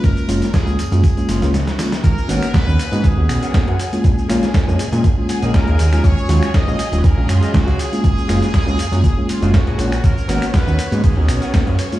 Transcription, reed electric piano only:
X:1
M:4/4
L:1/16
Q:"Swing 16ths" 1/4=120
K:G#dor
V:1 name="Reed electric piano"
[G,A,CE]2 [G,A,CE] z2 [G,A,CE] z [G,A,CE] z [G,A,CE]2 [G,A,CE] z2 [G,A,CE] z | z2 [A,B,CF] z2 [A,B,CF] z [A,B,CF] z [B,CF]3 [A,B,CF] z2 [G,A,CE]- | [G,A,CE]2 [G,A,CE] z2 [G,A,CE] z [G,A,CE] z [G,A,CE]3 [G,A,CE] z2 [F,G,CE]- | [F,G,CE]2 [F,G,CE] z2 [F,G,CE] z [F,G,CE] z [F,G,Ce]3 [F,G,CE] z2 [G,A,CE]- |
[G,A,CE]2 [G,A,CE] z2 [G,A,CE] z [G,A,CE] z [G,A,CE]2 [G,A,CE] z2 [G,A,CE] z | z2 [A,B,CF] z2 [A,B,CF] z [A,B,CF] z [B,CF]3 [A,B,CF] z2 [G,A,CE] |]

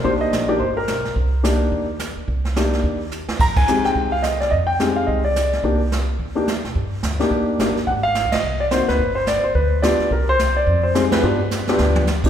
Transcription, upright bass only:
X:1
M:4/4
L:1/8
Q:"Swing" 1/4=214
K:Cm
V:1 name="Upright bass" clef=bass
C,,2 B,,,2 G,,,2 =B,,,2 | C,,4 E,,3 z | C,,4 E,,3 z | F,,3 E,, C,,4 |
F,,4 C,,4 | C,,4 E,,3 =B,,, | G,,2 D,,2 E,,2 G,,,2 | A,,,2- (3A,,, C,, G,,, C,,2- (3C,, E,, D,, |
G,,,3 z D,,3 z | C,,4 F,,4 | G,,3 D,, D,,4 |]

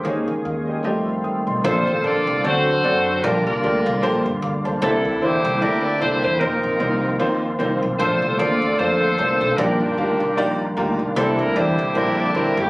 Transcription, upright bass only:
X:1
M:4/4
L:1/8
Q:"Swing" 1/4=151
K:Fm
V:1 name="Upright bass" clef=bass
E,, D,, E,,2 F,,2 E,, _C,, | [K:Bb] B,,, A,,, B,,, C,, D,,2 ^F,,2 | B,,, C,, D,, C,, B,,, G,,, D,, _D,, | C,, D,, =E,, C,, D,,2 C,, E,, |
F,,, B,,, C,,2 E,,2 C,, _C,, | B,,, C,, E,, D,, F,,2 C,, _C,, | B,,, F,, D,, C,, B,,,2 D,, C,, | C,, D,, =E,, C,, B,,,2 G,,, _G,,, |]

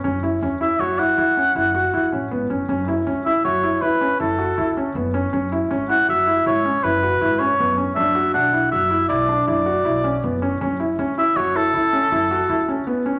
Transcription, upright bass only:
X:1
M:7/4
L:1/8
Q:1/4=159
K:F#m
V:1 name="Upright bass" clef=bass
F,,,2 E,,2 F,,,2 E,,2 F,,,2 E,, A,,, G,,, F,,, | F,,,2 C,,2 F,,,2 C,,2 F,,,2 C,,2 F,,,2 | F,,,2 G,,,2 F,,,2 G,,,2 F,,,2 G,,,2 F,,,2 | F,,,2 B,,,2 F,,,2 B,,,2 F,,,2 B,,,2 F,,,2 |
F,,,2 C,,2 F,,,2 C,,2 F,,,2 C,,2 z2 |]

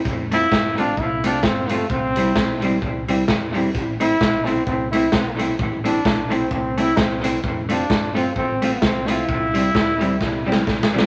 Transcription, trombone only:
X:1
M:4/4
L:1/16
Q:"Swing" 1/4=130
K:Am
V:1 name="Trombone"
z2 E4 D2 E2 D2 C2 A,2 | C8 z8 | z2 E4 C2 C2 E2 C2 z2 | z2 D4 C2 C2 E2 C2 z2 |
z2 D4 C2 C3 B, C2 E2- | E12 z4 |]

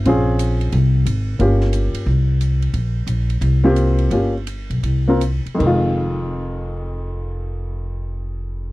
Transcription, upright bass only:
X:1
M:4/4
L:1/8
Q:"Swing" 1/4=170
K:Fm
V:1 name="Upright bass" clef=bass
B,,,4 C,,2 A,,,2 | G,,,3 z C,,4 | B,,,2 B,,,2 C,,4 | G,,,3 =B,,, C,,3 z |
F,,,8- | F,,,8 |]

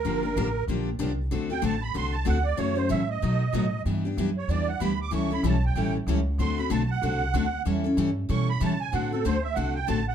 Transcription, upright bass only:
X:1
M:4/4
L:1/8
Q:"Swing" 1/4=189
K:Dmix
V:1 name="Upright bass" clef=bass
G,,,2 A,,,2 _B,,,2 C,,2 | D,,2 A,,,2 C,,2 D,,2 | F,,2 A,,2 B,,2 A,,2 | G,,2 F,,2 E,,2 D,,2 |
^C,,2 B,,,2 A,,,2 C,,2 | D,,2 B,,,2 C,,2 D,,2 | E,,2 G,,2 B,,2 ^C,2 | A,,2 D,,2 C,,2 A,,,2 |]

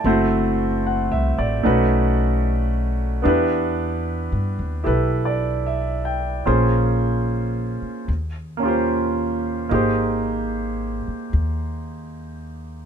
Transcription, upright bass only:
X:1
M:4/4
L:1/8
Q:"Swing" 1/4=75
K:Ephr
V:1 name="Upright bass" clef=bass
^F,,,2- (3F,,, C,, A,,, B,,,4 | E,,2- (3E,, G,, _E,, B,,,4 | _B,,,3 z _E,,4 | _A,,,3 z _E,,4 |]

